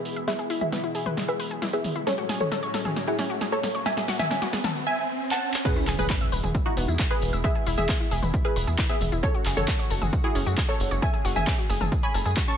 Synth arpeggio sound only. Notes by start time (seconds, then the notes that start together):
0.16 E5
0.28 B4
0.39 G#4
0.50 E4
0.72 B3
0.84 E4
0.95 G#4
1.06 B4
1.28 E5
1.40 B4
1.51 G#4
1.62 E4
1.73 B3
1.96 E4
2.07 C#4
2.18 F#4
2.29 G#4
2.52 A4
2.63 C#5
2.74 A4
2.85 G#4
3.07 F#4
3.19 C#4
3.30 F#4
3.41 G#4
3.52 A4
3.75 C#5
3.86 A4
3.97 G#4
4.08 F#4
4.31 C#4
4.42 F#4
4.53 G#4
4.64 A4
5.65 B3
5.76 E4
5.87 G#4
6.10 B4
6.21 E5
6.32 B4
6.43 G#4
6.66 E4
6.77 B3
6.88 E4
6.99 G#4
7.11 B4
7.33 E5
7.44 B4
7.55 G#4
7.67 E4
7.89 B3
8.00 E4
8.11 G#4
8.23 B4
8.45 E5
8.56 B4
8.67 G#4
8.79 E4
8.90 B3
9.12 E4
9.23 C#4
9.35 F#4
9.46 G#4
9.68 A4
9.79 C#5
9.90 A4
10.02 G#4
10.24 F#4
10.35 C#4
10.46 F#4
10.58 G#4
10.69 A4
10.91 C#5
11.02 A4
11.14 G#4
11.25 F#4
11.47 C#4
11.58 F#4
11.70 G#4
11.81 A4
12.03 C#5
12.14 A4
12.25 G#4
12.37 F#4
12.48 C#4